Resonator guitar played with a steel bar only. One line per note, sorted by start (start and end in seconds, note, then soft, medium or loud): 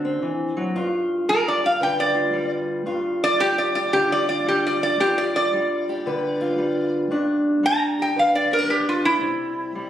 0.00 0.19 F#4 medium
1.29 1.46 A#4 medium
1.48 1.64 D5 medium
1.66 1.82 F5 medium
1.83 1.99 G5 medium
2.00 2.51 D5 medium
3.24 3.40 D5 medium
3.40 3.58 G4 loud
3.58 3.74 D5 medium
3.75 3.93 D5 medium
3.93 4.10 G4 medium
4.12 4.28 D5 medium
4.29 4.46 D5 medium
4.48 4.65 G4 medium
4.67 4.82 D5 medium
4.83 5.00 D5 medium
5.00 5.17 G4 medium
5.18 5.35 D5 medium
5.36 6.90 D5 medium
7.66 7.99 A#5 loud
8.02 8.18 G5 medium
8.19 8.36 F5 medium
8.35 8.52 D5 medium
8.53 8.70 A#4 medium
8.70 8.87 G4 medium
8.89 9.05 F4 medium
9.05 9.90 E4 loud